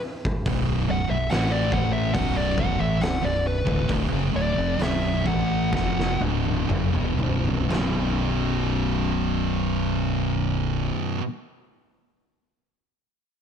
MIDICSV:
0, 0, Header, 1, 5, 480
1, 0, Start_track
1, 0, Key_signature, 2, "minor"
1, 0, Tempo, 849858
1, 257, Time_signature, 4, 2, 24, 8
1, 1700, Tempo, 892857
1, 2660, Tempo, 931677
1, 3140, Tempo, 981997
1, 4100, Tempo, 1022147
1, 6788, End_track
2, 0, Start_track
2, 0, Title_t, "Lead electric guitar"
2, 0, Program_c, 0, 29
2, 514, Note_on_c, 0, 78, 109
2, 620, Note_off_c, 0, 78, 0
2, 623, Note_on_c, 0, 76, 85
2, 733, Note_off_c, 0, 76, 0
2, 739, Note_on_c, 0, 78, 83
2, 851, Note_off_c, 0, 78, 0
2, 855, Note_on_c, 0, 74, 92
2, 970, Note_off_c, 0, 74, 0
2, 975, Note_on_c, 0, 78, 83
2, 1087, Note_off_c, 0, 78, 0
2, 1089, Note_on_c, 0, 76, 89
2, 1207, Note_off_c, 0, 76, 0
2, 1211, Note_on_c, 0, 78, 94
2, 1329, Note_off_c, 0, 78, 0
2, 1338, Note_on_c, 0, 74, 90
2, 1453, Note_off_c, 0, 74, 0
2, 1466, Note_on_c, 0, 78, 95
2, 1579, Note_off_c, 0, 78, 0
2, 1584, Note_on_c, 0, 76, 81
2, 1700, Note_off_c, 0, 76, 0
2, 1708, Note_on_c, 0, 78, 88
2, 1818, Note_off_c, 0, 78, 0
2, 1827, Note_on_c, 0, 74, 78
2, 1937, Note_off_c, 0, 74, 0
2, 1949, Note_on_c, 0, 71, 94
2, 2173, Note_off_c, 0, 71, 0
2, 2427, Note_on_c, 0, 74, 94
2, 2658, Note_off_c, 0, 74, 0
2, 2674, Note_on_c, 0, 76, 90
2, 2898, Note_off_c, 0, 76, 0
2, 2906, Note_on_c, 0, 78, 89
2, 3136, Note_off_c, 0, 78, 0
2, 3153, Note_on_c, 0, 78, 88
2, 3373, Note_off_c, 0, 78, 0
2, 6788, End_track
3, 0, Start_track
3, 0, Title_t, "Distorted electric guitar"
3, 0, Program_c, 1, 30
3, 262, Note_on_c, 1, 35, 100
3, 264, Note_on_c, 1, 42, 103
3, 266, Note_on_c, 1, 47, 96
3, 489, Note_off_c, 1, 35, 0
3, 490, Note_off_c, 1, 42, 0
3, 491, Note_off_c, 1, 47, 0
3, 499, Note_on_c, 1, 35, 66
3, 499, Note_on_c, 1, 42, 69
3, 615, Note_off_c, 1, 35, 0
3, 615, Note_off_c, 1, 42, 0
3, 623, Note_on_c, 1, 42, 65
3, 625, Note_on_c, 1, 35, 64
3, 737, Note_off_c, 1, 42, 0
3, 738, Note_off_c, 1, 35, 0
3, 741, Note_on_c, 1, 45, 88
3, 745, Note_on_c, 1, 52, 103
3, 749, Note_on_c, 1, 57, 106
3, 1209, Note_off_c, 1, 45, 0
3, 1211, Note_off_c, 1, 52, 0
3, 1213, Note_off_c, 1, 57, 0
3, 1221, Note_on_c, 1, 35, 90
3, 1221, Note_on_c, 1, 42, 98
3, 1226, Note_on_c, 1, 47, 106
3, 1573, Note_off_c, 1, 35, 0
3, 1574, Note_off_c, 1, 42, 0
3, 1575, Note_on_c, 1, 45, 80
3, 1576, Note_off_c, 1, 47, 0
3, 1580, Note_on_c, 1, 52, 94
3, 1691, Note_off_c, 1, 45, 0
3, 1694, Note_off_c, 1, 52, 0
3, 1700, Note_on_c, 1, 35, 64
3, 1703, Note_on_c, 1, 42, 69
3, 1810, Note_off_c, 1, 35, 0
3, 1812, Note_off_c, 1, 42, 0
3, 1817, Note_on_c, 1, 35, 64
3, 1818, Note_on_c, 1, 42, 69
3, 2006, Note_off_c, 1, 35, 0
3, 2007, Note_off_c, 1, 42, 0
3, 2047, Note_on_c, 1, 38, 91
3, 2056, Note_on_c, 1, 45, 96
3, 2163, Note_off_c, 1, 38, 0
3, 2167, Note_off_c, 1, 45, 0
3, 2176, Note_on_c, 1, 38, 95
3, 2177, Note_on_c, 1, 45, 94
3, 2288, Note_off_c, 1, 38, 0
3, 2288, Note_off_c, 1, 45, 0
3, 2298, Note_on_c, 1, 42, 93
3, 2300, Note_on_c, 1, 49, 91
3, 2410, Note_off_c, 1, 42, 0
3, 2411, Note_off_c, 1, 49, 0
3, 2419, Note_on_c, 1, 38, 92
3, 2421, Note_on_c, 1, 45, 99
3, 2531, Note_off_c, 1, 38, 0
3, 2532, Note_off_c, 1, 45, 0
3, 2538, Note_on_c, 1, 41, 81
3, 2543, Note_on_c, 1, 48, 93
3, 2653, Note_off_c, 1, 41, 0
3, 2655, Note_off_c, 1, 48, 0
3, 2658, Note_on_c, 1, 35, 98
3, 2660, Note_on_c, 1, 42, 103
3, 2662, Note_on_c, 1, 47, 102
3, 2890, Note_off_c, 1, 35, 0
3, 2890, Note_off_c, 1, 42, 0
3, 2891, Note_off_c, 1, 47, 0
3, 2901, Note_on_c, 1, 45, 86
3, 2904, Note_on_c, 1, 52, 89
3, 2909, Note_on_c, 1, 57, 103
3, 3134, Note_off_c, 1, 45, 0
3, 3135, Note_off_c, 1, 52, 0
3, 3138, Note_off_c, 1, 57, 0
3, 3142, Note_on_c, 1, 41, 94
3, 3147, Note_on_c, 1, 48, 93
3, 3148, Note_on_c, 1, 53, 105
3, 3367, Note_off_c, 1, 41, 0
3, 3369, Note_off_c, 1, 48, 0
3, 3370, Note_off_c, 1, 53, 0
3, 3374, Note_on_c, 1, 38, 82
3, 3379, Note_on_c, 1, 45, 100
3, 3380, Note_on_c, 1, 50, 91
3, 3603, Note_off_c, 1, 38, 0
3, 3606, Note_off_c, 1, 45, 0
3, 3606, Note_off_c, 1, 50, 0
3, 3612, Note_on_c, 1, 42, 95
3, 3616, Note_on_c, 1, 49, 92
3, 3724, Note_off_c, 1, 42, 0
3, 3726, Note_off_c, 1, 49, 0
3, 3728, Note_on_c, 1, 40, 91
3, 3730, Note_on_c, 1, 47, 95
3, 3843, Note_off_c, 1, 40, 0
3, 3845, Note_off_c, 1, 47, 0
3, 3856, Note_on_c, 1, 35, 92
3, 3858, Note_on_c, 1, 42, 89
3, 3860, Note_on_c, 1, 47, 88
3, 4089, Note_off_c, 1, 35, 0
3, 4095, Note_off_c, 1, 42, 0
3, 4095, Note_on_c, 1, 35, 94
3, 4096, Note_off_c, 1, 47, 0
3, 4106, Note_on_c, 1, 42, 86
3, 4117, Note_on_c, 1, 47, 96
3, 5739, Note_off_c, 1, 35, 0
3, 5749, Note_off_c, 1, 42, 0
3, 5760, Note_off_c, 1, 47, 0
3, 6788, End_track
4, 0, Start_track
4, 0, Title_t, "Fingered electric bass"
4, 0, Program_c, 2, 33
4, 259, Note_on_c, 2, 23, 94
4, 479, Note_off_c, 2, 23, 0
4, 495, Note_on_c, 2, 23, 82
4, 605, Note_off_c, 2, 23, 0
4, 614, Note_on_c, 2, 23, 87
4, 724, Note_off_c, 2, 23, 0
4, 739, Note_on_c, 2, 33, 96
4, 1193, Note_off_c, 2, 33, 0
4, 1211, Note_on_c, 2, 23, 92
4, 1554, Note_off_c, 2, 23, 0
4, 1583, Note_on_c, 2, 33, 91
4, 1694, Note_off_c, 2, 33, 0
4, 1697, Note_on_c, 2, 23, 79
4, 1808, Note_off_c, 2, 23, 0
4, 1818, Note_on_c, 2, 23, 79
4, 2038, Note_off_c, 2, 23, 0
4, 2055, Note_on_c, 2, 26, 94
4, 2166, Note_off_c, 2, 26, 0
4, 2174, Note_on_c, 2, 26, 94
4, 2285, Note_off_c, 2, 26, 0
4, 2294, Note_on_c, 2, 30, 90
4, 2406, Note_off_c, 2, 30, 0
4, 2418, Note_on_c, 2, 26, 90
4, 2530, Note_off_c, 2, 26, 0
4, 2542, Note_on_c, 2, 29, 97
4, 2654, Note_off_c, 2, 29, 0
4, 2659, Note_on_c, 2, 23, 93
4, 2880, Note_off_c, 2, 23, 0
4, 2897, Note_on_c, 2, 33, 86
4, 3122, Note_off_c, 2, 33, 0
4, 3143, Note_on_c, 2, 29, 90
4, 3358, Note_off_c, 2, 29, 0
4, 3374, Note_on_c, 2, 26, 88
4, 3594, Note_off_c, 2, 26, 0
4, 3609, Note_on_c, 2, 30, 95
4, 3722, Note_off_c, 2, 30, 0
4, 3732, Note_on_c, 2, 28, 94
4, 3845, Note_off_c, 2, 28, 0
4, 3852, Note_on_c, 2, 23, 83
4, 4082, Note_off_c, 2, 23, 0
4, 4102, Note_on_c, 2, 23, 88
4, 5603, Note_off_c, 2, 23, 0
4, 6788, End_track
5, 0, Start_track
5, 0, Title_t, "Drums"
5, 141, Note_on_c, 9, 36, 92
5, 198, Note_off_c, 9, 36, 0
5, 257, Note_on_c, 9, 46, 56
5, 260, Note_on_c, 9, 36, 116
5, 314, Note_off_c, 9, 46, 0
5, 316, Note_off_c, 9, 36, 0
5, 733, Note_on_c, 9, 46, 59
5, 748, Note_on_c, 9, 38, 101
5, 790, Note_off_c, 9, 46, 0
5, 805, Note_off_c, 9, 38, 0
5, 972, Note_on_c, 9, 36, 86
5, 1028, Note_off_c, 9, 36, 0
5, 1210, Note_on_c, 9, 46, 55
5, 1212, Note_on_c, 9, 36, 102
5, 1266, Note_off_c, 9, 46, 0
5, 1268, Note_off_c, 9, 36, 0
5, 1456, Note_on_c, 9, 36, 86
5, 1512, Note_off_c, 9, 36, 0
5, 1699, Note_on_c, 9, 46, 53
5, 1714, Note_on_c, 9, 38, 109
5, 1753, Note_off_c, 9, 46, 0
5, 1767, Note_off_c, 9, 38, 0
5, 2054, Note_on_c, 9, 36, 85
5, 2108, Note_off_c, 9, 36, 0
5, 2175, Note_on_c, 9, 36, 112
5, 2176, Note_on_c, 9, 46, 54
5, 2228, Note_off_c, 9, 36, 0
5, 2230, Note_off_c, 9, 46, 0
5, 2658, Note_on_c, 9, 46, 51
5, 2672, Note_on_c, 9, 38, 104
5, 2710, Note_off_c, 9, 46, 0
5, 2724, Note_off_c, 9, 38, 0
5, 2898, Note_on_c, 9, 36, 81
5, 2950, Note_off_c, 9, 36, 0
5, 3140, Note_on_c, 9, 36, 101
5, 3153, Note_on_c, 9, 38, 56
5, 3189, Note_off_c, 9, 36, 0
5, 3202, Note_off_c, 9, 38, 0
5, 3271, Note_on_c, 9, 38, 59
5, 3320, Note_off_c, 9, 38, 0
5, 3374, Note_on_c, 9, 48, 67
5, 3423, Note_off_c, 9, 48, 0
5, 3490, Note_on_c, 9, 48, 64
5, 3539, Note_off_c, 9, 48, 0
5, 3614, Note_on_c, 9, 47, 81
5, 3663, Note_off_c, 9, 47, 0
5, 3737, Note_on_c, 9, 45, 76
5, 3786, Note_off_c, 9, 45, 0
5, 3855, Note_on_c, 9, 43, 89
5, 3904, Note_off_c, 9, 43, 0
5, 3982, Note_on_c, 9, 43, 83
5, 4031, Note_off_c, 9, 43, 0
5, 4106, Note_on_c, 9, 43, 97
5, 4106, Note_on_c, 9, 55, 82
5, 4118, Note_on_c, 9, 38, 101
5, 4153, Note_off_c, 9, 43, 0
5, 4153, Note_off_c, 9, 55, 0
5, 4165, Note_off_c, 9, 38, 0
5, 6788, End_track
0, 0, End_of_file